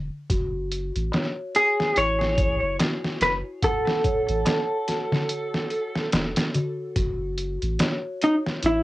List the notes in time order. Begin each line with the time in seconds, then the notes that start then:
0.30 F#1 F#4, kick, closed hi-hat
0.71 closed hi-hat
0.96 A1, closed hi-hat
1.12 C#5, snare, closed hi-hat, darbuka tek
1.55 G#4, closed hi-hat
1.80 snare
1.96 A1 E4 C#5, closed hi-hat
2.21 snare
2.38 kick, closed hi-hat
2.62 F#1
2.79 F#4, snare, closed hi-hat, darbuka tek
3.05 snare
3.21 F#1 B4, snare, closed hi-hat
3.63 A4 F#5, kick, closed hi-hat
3.87 snare
4.04 C#5, kick, closed hi-hat
4.29 A1, closed hi-hat
4.45 snare, closed hi-hat, darbuka tek
4.88 F#4, snare, closed hi-hat
5.12 snare, darbuka dum
5.29 closed hi-hat
5.54 snare
5.70 A4, closed hi-hat
5.96 snare
6.12 E1, snare, closed hi-hat, darbuka tek
6.36 snare, closed hi-hat
6.54 F#4, closed hi-hat, darbuka dum
6.96 F#1 F#4, kick, closed hi-hat
7.38 closed hi-hat
7.62 A1, closed hi-hat
7.79 C#5, snare, closed hi-hat, darbuka tek
8.21 D#4, closed hi-hat
8.46 snare
8.62 A1 E4, closed hi-hat